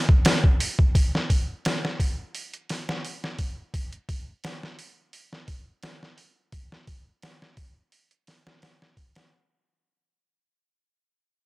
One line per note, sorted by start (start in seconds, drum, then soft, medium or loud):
0.09 kick medium
0.25 snare loud
0.25 open hi-hat medium
0.44 kick medium
0.60 open hi-hat medium
0.79 kick medium
0.95 kick medium
0.95 open hi-hat medium
1.15 snare soft
1.30 kick medium
1.30 open hi-hat medium
1.65 snare loud
1.65 open hi-hat medium
1.85 snare soft
2.00 kick medium
2.00 open hi-hat medium
2.35 open hi-hat medium
2.54 closed hi-hat soft
2.69 snare soft
2.69 open hi-hat medium
2.89 snare loud
3.05 open hi-hat medium
3.24 snare soft
3.39 kick medium
3.39 open hi-hat medium
3.74 kick loud
3.74 open hi-hat medium
3.93 closed hi-hat soft
4.09 kick medium
4.09 open hi-hat medium
4.44 snare loud
4.44 open hi-hat medium
4.63 snare soft
4.79 open hi-hat medium
5.13 open hi-hat medium
5.33 snare soft
5.48 kick medium
5.48 open hi-hat medium
5.83 snare medium
5.83 open hi-hat medium
6.03 snare soft
6.18 open hi-hat medium
6.52 kick loud
6.52 open hi-hat medium
6.72 snare soft
6.87 kick medium
6.87 open hi-hat medium
7.22 snare loud
7.22 open hi-hat medium
7.42 snare soft
7.57 kick medium
7.57 open hi-hat medium
7.92 open hi-hat medium
8.11 closed hi-hat soft
8.27 snare soft
8.27 open hi-hat medium
8.47 snare loud
8.62 snare medium
8.62 open hi-hat medium
8.82 snare soft
8.97 kick medium
8.97 open hi-hat medium
9.15 snare medium
9.15 open hi-hat medium